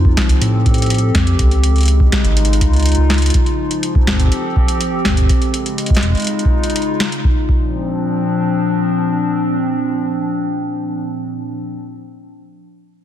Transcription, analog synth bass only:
Already playing: F2
0.29 C2
0.41 A2
1.15 F2
1.39 C#2
2.24 G#1
2.61 C#2
2.98 C#2

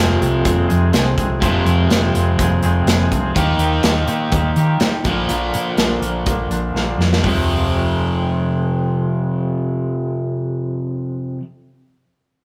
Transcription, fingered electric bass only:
Already playing: F1
0.21 C2
0.46 F1
0.71 F2
0.94 C2
1.18 C2
1.42 F1
1.65 F2
1.92 F1
2.15 F1
2.39 F1
2.63 F1
2.86 F1
3.11 C2
3.36 D#2
3.58 D#2
3.84 D#2
4.07 A#2
4.32 D#2
4.56 D#3
4.81 A#2
5.05 A#1
5.30 A#1
5.55 A#2
5.78 A#1
6.02 A#1
6.27 A#1
6.50 A#1
6.74 A#1
6.98 F2
7.24 F1

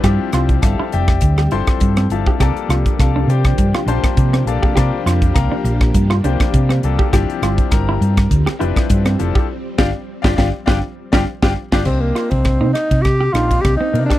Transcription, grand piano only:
0.04 F3 C4 D4 E4 G4
0.62 A4 E5 F5 A5
0.93 G4 D5 E5 G5
1.52 F3 C4 D4 E4 A4 C5 G5 A5 C6
2.11 F3 C4 D4 E4 A4 E5 F5 A5
2.41 G3 A#3 D4 F4 A4 D5 A5 A#5 D6
3.00 A4 D5 F5 A5
3.29 G4 C5 D5 G5
3.88 G3 A#3 D4 F4 C5 G5 A5 C6
4.47 G3 A#3 D4 F4 A4 D5 F5 A5
4.77 G3 A#3 D4 F4 C5 D5 A5 A#5 D6
5.34 A#4 F5 G5 A#5
6.24 G3 A#3 D4 F4 G4 C5 D5 G5
6.84 G3 A#3 D4 F4 A4
7.13 F3 C4 D4 E4 G4
7.71 A#4 A#5
8.59 F3 C4 D4 E4 G4 B4 D5 E5 G5
9.19 F3 C4 D4 E4 A4
9.78 D4 F4 G4 D5 F5 G5
10.22 D4 F4 G4 D5 F5 G5
10.36 D4 F4 G4 D5 F5 G5
10.66 D4 F4 G4 D5 F5 G5
11.12 D4 F4 G4 D5 F5 G5
11.43 D4 F4 G4 D5 F5 G5
11.73 D4 F4 G4 D5 F5 G5
11.86 A#3 C4 D4 D#4 G4
13.34 A#3 C4 D4 D#4 G4
13.93 A#3 C4 D4 D#4 A#4

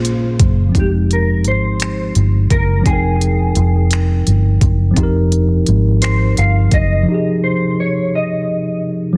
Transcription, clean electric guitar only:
Already playing: F4
0.80 G4
1.13 A#4
1.48 C5
2.51 A#4
2.86 G#4
6.02 C5
6.38 F5
6.74 D#5
7.44 C5
7.80 C#5
8.15 D#5

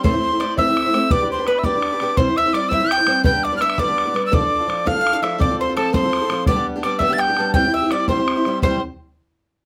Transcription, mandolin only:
0.04 C5
0.40 D5
0.59 E5
1.11 D5
1.48 B4
1.64 D5
2.17 C5
2.38 E5
2.55 D5
2.73 E5
2.92 G5
3.26 G5
3.45 D5
3.62 E5
3.79 D5
4.33 D5
4.87 F5
5.01 F5
5.13 F5
5.23 E5
5.41 D5
5.61 C5
5.76 A4
5.94 C5
6.47 D5
6.83 D5
6.99 E5
7.18 G5
7.54 G5
7.74 E5
7.91 D5
8.09 C5
8.63 C5

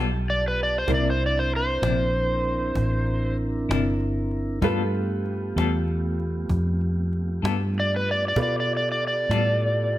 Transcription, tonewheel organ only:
Already playing: B3 F4 G4 A5
0.89 C4 D4 E4 A#4
4.61 A3 B3 F4 G4
8.36 B3 F4 G4 A4

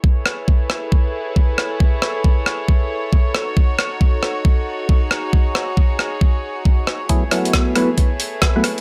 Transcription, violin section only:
0.04 E4 G#4 A4 B4 C#5
3.35 D#4 F#4
5.11 G#4
7.10 A3 E4 G#4 B4

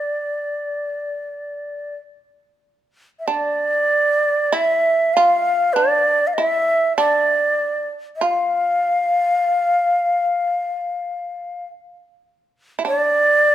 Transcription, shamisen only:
3.28 D4
4.52 E4
5.17 F4
5.76 D4
6.38 E4
6.98 D4
8.21 F4
12.79 E4
12.85 D4

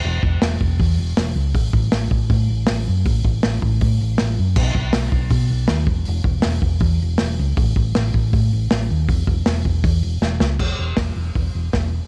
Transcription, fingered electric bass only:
0.04 E1
0.23 E1
0.42 E1
0.61 E1
0.79 E2
0.99 E1
1.17 E1
1.36 C#2
1.54 A1
1.74 A1
1.93 A1
2.11 A1
2.30 A2
2.50 A1
2.69 A1
2.88 F#2
3.05 A1
3.25 A1
3.44 A1
3.62 A1
3.81 A2
4.01 A1
4.20 A1
4.39 F#2
4.56 B1
4.75 B1
4.94 B1
5.12 B1
5.31 B2
5.50 B1
5.69 D#2
5.87 E1
6.08 E1
6.24 E1
6.45 E1
6.62 E1
6.81 E2
7.02 E1
7.21 E1
7.39 C#2
7.57 A1
7.76 A1
7.96 A1
8.14 A1
8.34 A2
8.53 A1
8.72 A1
8.90 D#2
9.09 E1
9.28 E1
9.46 E1
9.66 E1
9.84 E2
10.03 E1
10.21 E1
10.40 C#2
10.60 E1
10.79 E1
10.97 E1
11.16 E1
11.35 E1
11.55 E1
11.74 E1

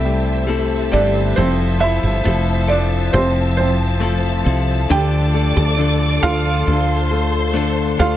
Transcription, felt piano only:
Already playing: E4 E5
0.92 D4 D5
1.36 C4 C5
1.80 E4 E5
2.68 D4 D5
3.13 C4 C5
3.57 C4 C5
4.91 G4 G5
6.23 F4 F5
7.99 F4 F5

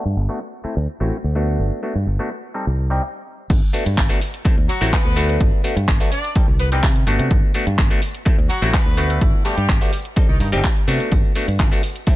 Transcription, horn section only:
4.69 F#3 F#4
4.93 B3 B4
6.12 D4 D5
6.59 B3 B4
6.72 B3 B4
8.50 F#3 F#4
8.73 B3 B4
8.97 A3 A4
9.10 A3 A4
9.21 E3 E4
9.45 G3 G4
10.29 D#3 D#4
10.40 D#3 D#4

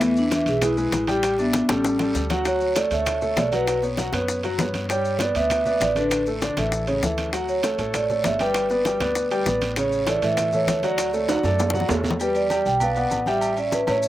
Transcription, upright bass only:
Already playing: E2
0.46 B1
0.92 A1
1.69 A1
2.15 D2
2.91 D2
3.37 B1
4.13 F#2
4.59 G2
5.35 D2
5.80 A1
6.57 A1
7.02 D2
7.78 A1
8.24 G1
9.00 D2
9.46 A1
10.22 A2
10.67 D2
11.44 F#2
11.90 E2
12.66 B1
13.11 A1
13.87 A2

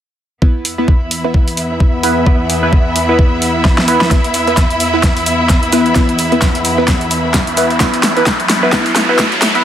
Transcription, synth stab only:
0.42 B3 E4 B4
0.78 B3 E4 B4
1.24 B3 E4 B4
2.03 B3 E4 B4
2.26 B3 E4 B4
2.63 B3 E4 B4
3.09 B3 E4 B4
3.88 B3 E4 B4
4.11 B3 B4
4.47 B3 E4 B4
4.94 B3 E4 B4
5.73 B3 E4 B4
5.96 B3 E4 B4
6.32 B3 E4 B4
6.78 B3 E4 B4
7.57 B3 E4 B4
7.80 B3 E4 B4
8.17 B3 E4 B4
8.63 B3 E4 B4
8.73 B3 E4 B4
9.09 B3 E4 B4
9.55 B3 E4 B4

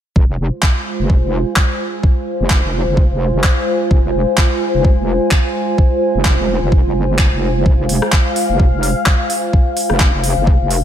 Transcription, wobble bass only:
0.16 F1
0.39 F1
0.99 F1
2.40 F1
2.63 F1
2.87 F#1
3.10 F1
3.34 F1
3.91 F1
4.14 F1
4.74 F1
6.15 F1
6.38 F1
6.62 F1
6.85 F#1
7.32 F1
7.66 F1
7.89 F1
8.49 F1
9.90 F1
10.13 F1
10.37 F#1
10.60 F1

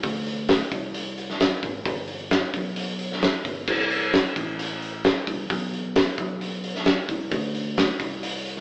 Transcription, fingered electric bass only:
0.04 D2
0.71 C2
1.63 G#1
1.85 G1
2.54 B1
3.45 G1
3.68 C2
4.36 A1
5.28 C2
5.50 B1
6.18 B1
7.09 C2
7.31 D2
7.99 C2

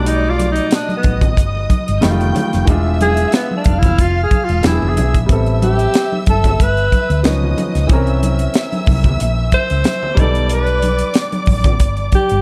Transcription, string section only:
Already playing: D5 D6
0.71 D#5 D#6
2.02 G5 G6
2.69 E5 E6
3.65 F5 F6
4.64 E5 E6
5.28 E5 E6
7.25 D#5 D#6
7.90 E5 E6
10.18 D5 D6

